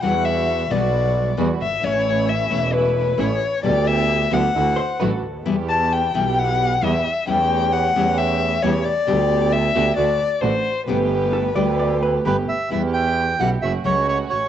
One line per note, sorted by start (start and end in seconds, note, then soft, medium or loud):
0.02 0.67 E2 medium
0.02 0.11 B2 medium
0.02 0.12 E3 medium
0.02 0.67 G3 medium
0.02 0.12 G3 medium
0.02 0.12 B3 medium
0.02 0.67 E4 medium
0.02 0.67 F#4 medium
0.02 0.12 F#4 medium
0.02 0.26 F#5 medium
0.25 0.73 E5 medium
0.70 1.35 B1 medium
0.70 0.79 B2 medium
0.70 0.80 E3 medium
0.70 1.35 G3 medium
0.70 0.80 G3 medium
0.70 0.79 B3 loud
0.70 1.35 E4 medium
0.70 1.35 F#4 medium
0.70 0.80 F#4 medium
0.70 1.39 D5 medium
1.37 1.57 E2 medium
1.37 1.47 B2 medium
1.37 1.47 E3 medium
1.37 1.57 G3 medium
1.37 1.47 G3 medium
1.37 1.47 B3 medium
1.37 1.57 E4 medium
1.37 1.47 F#4 medium
1.37 1.57 F#4 medium
1.61 1.82 G1 medium
1.61 1.86 E5 medium
1.82 2.47 A1 medium
1.82 1.92 E3 medium
1.82 2.47 A3 medium
1.82 1.92 A3 medium
1.82 2.47 C#4 medium
1.82 1.92 C#4 medium
1.82 2.47 E4 medium
1.82 1.92 E4 medium
1.82 2.31 C#5 medium
2.29 2.75 E5 medium
2.50 3.15 E1 medium
2.50 2.59 E3 medium
2.50 3.15 A3 medium
2.50 2.60 A3 medium
2.50 3.15 C#4 medium
2.50 2.60 C#4 medium
2.50 3.15 E4 medium
2.50 2.60 E4 medium
2.74 3.22 B4 medium
3.18 3.37 A1 medium
3.18 3.27 E3 medium
3.18 3.37 A3 medium
3.18 3.27 A3 medium
3.18 3.37 C#4 medium
3.18 3.28 C#4 medium
3.18 3.37 E4 medium
3.18 3.28 E4 medium
3.18 3.63 C#5 medium
3.63 4.29 D2 loud
3.63 3.72 D3 medium
3.63 3.72 G3 medium
3.63 4.28 B3 medium
3.63 3.73 B3 medium
3.63 4.28 D4 medium
3.63 4.29 G4 medium
3.63 3.73 G4 medium
3.63 3.89 D5 medium
3.87 4.35 E5 loud
4.31 4.51 D2 medium
4.31 4.40 D3 medium
4.31 4.41 F#3 medium
4.31 4.41 A3 medium
4.31 4.51 B3 medium
4.31 4.51 D4 medium
4.31 4.41 E4 loud
4.31 4.41 F#4 medium
4.31 4.51 G4 medium
4.31 5.01 F#5 medium
4.54 4.74 D2 medium
4.54 4.74 D4 medium
4.54 4.74 E4 medium
4.54 4.74 F#4 medium
4.76 4.98 C5 medium
5.00 5.20 A1 medium
5.00 5.09 D3 medium
5.00 5.09 F#3 medium
5.00 5.09 A3 medium
5.00 5.19 D4 medium
5.00 5.19 E4 medium
5.00 5.09 E4 medium
5.00 5.19 F#4 medium
5.00 5.10 F#4 medium
5.00 5.11 B4 medium
5.11 5.54 A4 medium
5.23 5.46 D2 medium
5.45 6.11 E2 medium
5.45 5.55 B2 medium
5.45 5.55 E3 medium
5.45 5.55 G3 medium
5.45 6.10 B3 medium
5.45 5.55 B3 medium
5.45 6.11 E4 medium
5.45 5.55 E4 medium
5.45 6.11 G4 medium
5.70 5.94 A5 medium
5.93 6.40 G5 medium
6.13 6.79 B1 medium
6.13 6.23 B2 medium
6.13 6.23 E3 medium
6.13 6.23 G3 medium
6.13 6.78 B3 medium
6.13 6.24 B3 medium
6.13 6.79 E4 medium
6.13 6.24 E4 medium
6.13 6.79 G4 medium
6.39 6.85 F#5 medium
6.81 7.01 E2 medium
6.81 6.91 B2 medium
6.81 6.91 E3 medium
6.81 6.91 G3 medium
6.81 7.01 B3 medium
6.81 6.91 B3 medium
6.81 7.01 E4 medium
6.81 6.91 E4 medium
6.81 7.01 G4 medium
6.81 7.28 E5 medium
7.27 7.92 E2 medium
7.27 7.36 E3 medium
7.27 7.36 G3 medium
7.27 7.92 A3 medium
7.27 7.92 C#4 medium
7.27 7.36 C#4 medium
7.27 7.37 E4 medium
7.27 7.92 G4 medium
7.27 7.74 G5 medium
7.73 8.19 F#5 medium
7.95 8.60 E2 medium
7.95 8.04 E3 medium
7.95 8.04 G3 medium
7.95 8.59 A3 medium
7.95 8.60 C#4 medium
7.95 8.04 C#4 loud
7.95 8.05 E4 loud
7.95 8.60 G4 medium
8.17 8.64 E5 medium
8.63 8.82 E2 medium
8.63 8.72 E3 medium
8.63 8.72 G3 medium
8.63 8.82 A3 medium
8.63 8.82 C#4 medium
8.63 8.72 C#4 medium
8.63 8.72 E4 loud
8.63 8.82 G4 medium
8.63 8.86 C#5 medium
8.85 9.54 D5 medium
9.07 9.72 D2 loud
9.07 9.16 D3 medium
9.07 9.17 G3 medium
9.07 9.72 B3 medium
9.07 9.17 B3 medium
9.07 9.72 D4 medium
9.07 9.72 G4 medium
9.07 9.17 G4 loud
9.52 9.96 E5 medium
9.75 9.94 D2 medium
9.75 9.84 D3 medium
9.75 9.84 A3 medium
9.75 9.94 B3 medium
9.75 9.94 D4 medium
9.75 9.84 D4 medium
9.75 9.84 F#4 loud
9.75 9.94 G4 medium
9.97 10.16 D2 medium
9.97 10.16 A3 medium
9.97 10.16 D4 medium
9.97 10.16 F#4 medium
9.97 10.42 D5 medium
10.41 10.61 A1 medium
10.41 10.51 D3 medium
10.41 10.61 A3 medium
10.41 10.52 A3 medium
10.41 10.61 D4 medium
10.41 10.52 D4 medium
10.41 10.61 F#4 medium
10.41 10.52 F#4 medium
10.41 10.87 C5 medium
10.87 11.52 G1 medium
10.87 10.96 D3 medium
10.87 10.97 G3 medium
10.87 11.52 A3 medium
10.87 11.52 B3 medium
10.87 10.97 B3 medium
10.87 11.52 G4 medium
10.87 10.97 G4 medium
10.87 12.44 B4 medium
11.33 11.54 A4 medium
11.55 12.21 D2 medium
11.55 11.65 D3 medium
11.55 11.65 G3 medium
11.55 12.22 A3 medium
11.55 12.22 B3 medium
11.55 11.65 B3 medium
11.55 11.65 G4 medium
11.55 12.22 G4 medium
11.55 11.78 D5 medium
11.79 12.02 D5 medium
12.03 12.24 B4 medium
12.25 12.44 G1 medium
12.25 12.34 D3 medium
12.25 12.34 G3 medium
12.25 12.44 A3 medium
12.25 12.45 B3 medium
12.25 12.35 B3 medium
12.25 12.68 G4 medium
12.25 12.45 G4 medium
12.25 12.35 G4 medium
12.25 12.36 B4 medium
12.49 12.70 E5 medium
12.70 13.36 E2 medium
12.70 12.80 B2 medium
12.70 12.80 E3 medium
12.70 12.80 G3 medium
12.70 13.36 B3 medium
12.70 12.80 B3 medium
12.70 13.36 E4 medium
12.70 12.80 E4 medium
12.70 13.36 G4 medium
12.70 12.82 E5 medium
12.94 13.41 G5 medium
13.39 13.59 B1 medium
13.39 13.49 C#3 medium
13.39 13.49 F#3 medium
13.39 13.49 A3 medium
13.39 13.59 B3 medium
13.39 13.49 C#4 medium
13.39 13.59 E4 medium
13.39 13.49 F#4 medium
13.39 13.59 G4 medium
13.39 13.50 F#5 medium
13.62 13.81 F#1 medium
13.62 13.81 A3 medium
13.62 13.81 C#4 medium
13.62 13.81 F#4 medium
13.62 13.72 E5 medium
13.84 14.30 C#2 medium
13.84 13.93 C#3 medium
13.84 13.94 F#3 medium
13.84 13.94 A3 medium
13.84 14.48 A3 medium
13.84 14.48 C#4 medium
13.84 13.94 C#4 medium
13.84 13.94 F#4 medium
13.84 14.48 F#4 medium
13.84 14.07 C#5 medium
14.08 14.18 C#5 medium
14.30 14.48 A1 soft
14.30 14.48 C#5 medium